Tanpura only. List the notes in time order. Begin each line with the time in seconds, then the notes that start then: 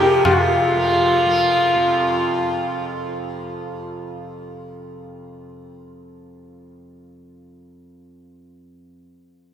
Already playing: F2 C3 F3
0.27 C3
0.76 F3
1.26 F3
1.76 F2